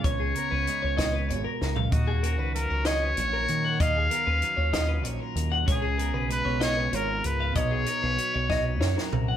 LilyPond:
<<
  \new Staff \with { instrumentName = "Clean electric guitar" } { \time 6/8 \key cis \mixolydian \tempo 4. = 64 cis''16 gis'16 ais'16 b'8 cis''16 dis''16 b'16 cis''16 ais'8 eis''16 | dis''16 gis'16 ais'16 b'8 cis''16 dis''16 b'16 cis''16 ais'8 fis''16 | dis''16 gis'16 ais'16 b'8 cis''16 dis''16 b'16 cis''16 ais'8 fis''16 | cis''16 gis'16 ais'16 b'8 cis''16 dis''16 b'16 cis''16 ais'8 eis''16 |
dis''16 gis'16 ais'16 b'8 cis''16 dis''16 b'16 cis''16 ais'8 fis''16 | }
  \new Staff \with { instrumentName = "Trumpet" } { \time 6/8 \key cis \mixolydian cis''2~ cis''8 r8 | fis'4 ais'8 cis''4. | eis''2 r4 | gis'4 b'8 cis''8 ais'8 b'8 |
cis''2~ cis''8 r8 | }
  \new Staff \with { instrumentName = "Clean electric guitar" } { \time 6/8 \key cis \mixolydian << { b8 b8 dis'16 eis'4.~ eis'16 | r8 cis'8 fis'8 cis'8 fis'4 | r8 b16 cis'16 dis'16 eis'16 cis'8 dis'16 eis'8. | r8 b8 dis'16 eis'16 b8 eis'4 |
r8 dis'8 fis'8 dis'8 dis'16 fis'8. | } \\ { cis4 gis4 b,8 cis8 | dis4 fis4 ais,4 | dis4 fis4 ais,4 | cis4 gis4 gis,4 |
b,4 fis4 fis,4 | } >> }
  \new Staff \with { instrumentName = "Fingered electric bass" } { \clef bass \time 6/8 \key cis \mixolydian cis,8 r16 cis,16 r16 cis,8. gis,,16 r16 cis,8 | dis,8. cis,8 cis,8. ais,,8 dis8 | dis,8 r16 dis,16 r16 dis,8. ais,,16 r16 dis,8 | cis,8. b,,8 b,,8. gis,,8 cis,8 |
b,,8 r16 b,,16 r16 b,,8. fis,16 r16 c,8 | }
  \new DrumStaff \with { instrumentName = "Drums" } \drummode { \time 6/8 <hh bd>8 hh8 hh8 <hh bd sn>8 hh8 sn16 tomfh16 | <hh bd>8 hh8 hh8 <hh sn>8 hh8 hh8 | <hh bd>8 hh8 hh8 <hh bd sn>8 hh8 hh8 | <hh bd>8 hh8 hh8 <hh sn>8 hh8 hh8 |
<hh bd>8 hh8 hh8 <bd sn>8 sn16 sn16 tomfh8 | }
>>